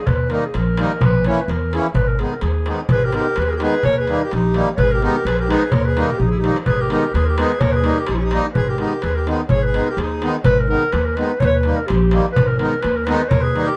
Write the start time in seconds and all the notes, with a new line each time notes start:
0.07 D#2 B4, darbuka dum
0.29 D#3 G3 A#3 D#4 A#4, darbuka tek
0.40 A#4
0.46 G#4
0.54 A#1 A#4, darbuka tek
0.77 D#3 G3 A#3 D#4, darbuka tek
0.91 darbuka tek
1.01 A#1 B4, darbuka dum
1.24 E3 A#3 C#4 E4 C#5, darbuka tek
1.41 B4
1.48 E2 A#4, darbuka tek
1.72 E3 A#3 C#4 E4 G#4, darbuka tek
1.86 darbuka tek
1.94 G#1 B4, darbuka dum
2.08 A#4
2.19 D#3 G#3 B3 D#4 G#4, darbuka tek
2.31 A#4, darbuka tek
2.41 D#2 G#4, darbuka tek
2.54 darbuka tek
2.65 D#3 G#3 B3 D#4, darbuka tek
2.78 darbuka tek
2.89 G#1 G#4 B4, darbuka dum
3.04 G4 A#4
3.12 D#3 G#3 B3 D#4 A#4, darbuka tek
3.16 G4
3.25 darbuka tek
3.36 D#2 G#4 B4, darbuka tek
3.40 G4
3.44 G#4 B4
3.50 E4 G4 G#4 A#4
3.55 G4 A#4
3.59 D#3 G#3 B3 D#4 B4, darbuka tek
3.63 G#4
3.83 D#2 A#4 C#5, darbuka dum
3.97 G#4 B4
4.07 D#3 G3 A#3 D#4, darbuka tek
4.22 G4 A#4
4.31 A#1 D#4 G4, darbuka tek
4.54 D#3 G3 A#3 D#4, darbuka tek
4.76 G#1 A#4 B4 C#5, darbuka dum
4.82 G#4
4.91 G4 A#4
5.00 D#3 G#3 B3 D#4 G4 A#4, darbuka tek
5.17 darbuka tek
5.25 A#1 G#4 B4, darbuka tek
5.39 G4 A#4
5.47 D#3 G#3 B3 D#4 G#4 B4, darbuka tek
5.62 darbuka tek
5.72 D#2 A#4 C#5, darbuka dum
5.84 G#4 B4, darbuka tek
5.95 D#3 G3 A#3 D#4, darbuka tek
6.07 G4 A#4, darbuka dum
6.18 A#1 D#4 G4, darbuka dum
6.27 G#4
6.31 E4, darbuka dum
6.38 D#4 G4
6.42 D#3 G3 A#3 D#4, darbuka tek
6.56 darbuka tek
6.66 G#1 G#4 B4, darbuka dum
6.80 G4 A#4
6.89 D#3 G#3 B3 D#4 G4 A#4, darbuka tek
7.05 darbuka tek
7.13 D#2 G#4 B4, darbuka tek
7.25 G4 A#4
7.36 D#3 G#3 B3 D#4 G#4 B4, darbuka tek
7.51 darbuka tek
7.59 D#2 A#4 C#5, darbuka dum
7.72 G#4 B4
7.82 D#3 G3 A#3 D#4, darbuka tek
7.96 G4 A#4, darbuka tek
8.07 A#1 D#4 G4, darbuka tek
8.15 C#4 E4
8.20 G4
8.24 D#4
8.31 D#3 G3 A#3 D#4, darbuka tek
8.53 G#1 G#4 B4, darbuka dum
8.68 G4 A#4
8.78 D#3 G#3 B3 D#4 G4 A#4, darbuka tek
8.90 darbuka tek
9.02 D#2 G#4 B4, darbuka tek
9.15 G4 A#4
9.26 D#3 G#3 B3 D#4, darbuka tek
9.39 darbuka tek
9.49 G#1 C#5, darbuka dum
9.53 G#4
9.62 B4
9.66 G#4
9.73 D#3 G#3 B3 D#4, darbuka tek
9.87 G4 A#4, darbuka tek
9.97 D#2 G#4, darbuka tek
10.02 D#4
10.12 darbuka tek
10.21 D#3 G#3 B3 D#4, darbuka tek
10.35 darbuka tek
10.44 G#1 B4, darbuka dum
10.59 A#4
10.69 D#3 G#3 B3 D#4 A#4
10.92 D#2 B4, darbuka tek
11.05 A#4
11.15 D#3 G#3 B3 D#4 B4, darbuka tek
11.30 darbuka tek
11.39 D#2 C#5, darbuka dum
11.44 B4 C#5
11.54 B4
11.63 D#3 G3 A#3 D#4, darbuka tek
11.76 A#4, darbuka tek
11.87 A#1 G4, darbuka tek
12.11 D#3 G3 A#3 D#4, darbuka tek
12.32 B4
12.36 G#1, darbuka dum
12.47 A#4
12.58 D#3 G#3 B3 D#4 A#4, darbuka tek
12.81 D#2 B4, darbuka tek
12.96 A#4
13.05 D#3 G#3 B3 D#4 B4, darbuka tek
13.21 darbuka tek
13.28 D#2 A#4 C#5, darbuka dum
13.41 G#4 B4
13.45 darbuka tek
13.54 D#3 G3 A#3 D#4, darbuka tek
13.65 G4 A#4
13.69 darbuka tek